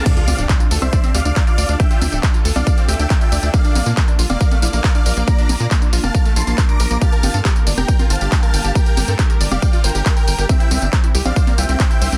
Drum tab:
CC |x-------------------------------|--------------------------------|--------------------------------|--------------------------------|
HH |x-x-o-x-x-x-o-x-x-x-oxx-x-x-o-x-|x-x-o-x-x-x-o-x-x-x-oxx-x-x-o-x-|x-x-o-x-x-x-o-x-x-x-oxx-x-x-o-x-|x-x-o-x-x-x-o-x-x-x-oxx-x-x-o-x-|
TB |x-x-x-x-x-x-x-x-x-x-x-x-x-x-x-x-|x-x-x-x-x-x-x-x-x-x-x-x-x-x-x-x-|x-x-x-x-x-x-x-x-x-x-x-x-x-x-x-x-|x-x-x-x-x-x-x-x-x-x-x-x-x-x-x-x-|
CP |--------x---------------x-------|--------x---------------x-------|--------x---------------x-------|--------x---------------x-------|
CG |----o---------o---o-------------|----o---------o-----------------|----o---------o---o-------------|----o---------o-----------------|
BD |o-------o-------o-------o-------|o-------o-------o-------o-------|o-------o-------o-------o-------|o-------o-------o-------o-------|

CC |--------------------------------|--------------------------------|--------------------------------|
HH |x-x-o-x-x-x-o-x-x-x-oxx-x-x-o-x-|x-x-o-x-x-x-o-x-x-x-oxx-x-x-o-x-|x-x-o-x-x-x-o-x-x-x-oxx-x-x-o-x-|
TB |x-x-x-x-x-x-x-x-x-x-x-x-x-x-x-x-|x-x-x-x-x-x-x-x-x-x-x-x-x-x-x-x-|x-x-x-x-x-x-x-x-x-x-x-x-x-x-x-x-|
CP |--------x---------------x-------|--------x---------------x-------|--------x---------------x-------|
CG |----o---------o---o-------------|----o---------o-----------------|----o---------o---o-------------|
BD |o-------o-------o-------o-------|o-------o-------o-------o-------|o-------o-------o-------o-------|